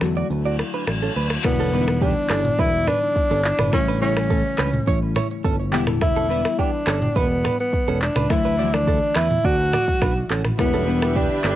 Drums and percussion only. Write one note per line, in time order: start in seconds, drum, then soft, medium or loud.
0.01 finger snap medium
0.01 cross-stick medium
0.01 shaker medium
0.16 shaker medium
0.30 shaker medium
0.59 finger snap medium
0.59 cross-stick medium
0.59 shaker medium
0.73 shaker medium
0.87 finger snap medium
0.87 cross-stick loud
0.87 shaker medium
1.15 shaker soft
1.30 finger snap medium
1.30 cross-stick medium
1.30 shaker medium
1.44 finger snap medium
1.44 kick loud
1.44 cross-stick loud
1.44 crash loud
1.44 shaker medium
1.73 shaker medium
1.88 finger snap medium
1.88 cross-stick loud
1.88 shaker medium
2.02 kick loud
2.02 shaker medium
2.29 finger snap medium
2.29 cross-stick medium
2.29 clap loud
2.29 open hi-hat medium
2.29 shaker medium
2.45 mid tom loud
2.45 shaker medium
2.59 kick loud
2.59 shaker medium
2.87 finger snap medium
2.87 cross-stick medium
2.87 mid tom medium
2.87 shaker medium
3.02 shaker medium
3.16 kick loud
3.16 shaker medium
3.44 clap loud
3.44 open hi-hat medium
3.44 shaker medium
3.59 finger snap medium
3.59 cross-stick loud
3.59 mid tom loud
3.59 shaker medium
3.73 finger snap medium
3.73 kick loud
3.73 cross-stick loud
3.73 shaker medium
4.02 shaker medium
4.17 finger snap medium
4.17 cross-stick loud
4.17 shaker medium
4.30 kick loud
4.30 shaker medium
4.58 finger snap medium
4.58 cross-stick medium
4.58 clap medium
4.58 open hi-hat medium
4.58 shaker medium
4.73 mid tom medium
4.73 shaker medium
4.87 kick loud
4.87 shaker medium
5.16 finger snap medium
5.16 cross-stick medium
5.16 mid tom medium
5.16 shaker medium
5.30 shaker medium
5.44 kick medium
5.44 shaker medium
5.73 clap medium
5.73 open hi-hat medium
5.73 shaker medium
5.87 finger snap medium
5.87 cross-stick loud
5.87 mid tom loud
5.87 shaker medium
6.01 finger snap medium
6.01 kick loud
6.01 cross-stick loud
6.01 shaker medium
6.31 shaker medium
6.45 finger snap medium
6.45 cross-stick loud
6.45 shaker medium
6.59 kick medium
6.59 shaker medium
6.87 finger snap medium
6.87 cross-stick medium
6.87 clap medium
6.87 open hi-hat medium
6.87 shaker medium
7.02 mid tom loud
7.02 shaker medium
7.16 kick loud
7.16 shaker medium
7.45 finger snap medium
7.45 cross-stick medium
7.45 mid tom medium
7.45 shaker medium
7.59 shaker medium
7.73 kick loud
7.73 shaker medium
8.01 clap medium
8.01 open hi-hat medium
8.01 shaker soft
8.16 finger snap medium
8.16 cross-stick medium
8.16 mid tom loud
8.16 shaker medium
8.30 finger snap medium
8.30 kick loud
8.30 cross-stick loud
8.30 shaker medium
8.59 shaker medium
8.74 finger snap medium
8.74 cross-stick loud
8.74 shaker medium
8.87 kick loud
8.87 shaker medium
9.15 finger snap medium
9.15 cross-stick medium
9.15 clap medium
9.15 open hi-hat medium
9.15 shaker medium
9.30 mid tom medium
9.30 shaker medium
9.44 kick loud
9.44 shaker medium
9.73 finger snap medium
9.73 cross-stick medium
9.73 mid tom medium
9.73 shaker medium
9.88 kick medium
9.88 shaker medium
10.02 finger snap medium
10.02 kick loud
10.02 cross-stick loud
10.02 shaker medium
10.30 clap medium
10.30 open hi-hat medium
10.30 shaker medium
10.44 finger snap medium
10.44 cross-stick medium
10.44 mid tom loud
10.44 shaker medium
10.59 finger snap medium
10.59 kick loud
10.59 cross-stick medium
10.59 shaker medium
10.88 shaker medium
11.02 finger snap medium
11.02 cross-stick loud
11.02 shaker medium
11.16 kick medium
11.16 shaker medium
11.44 finger snap medium
11.44 cross-stick medium
11.44 clap medium
11.44 open hi-hat medium
11.44 shaker medium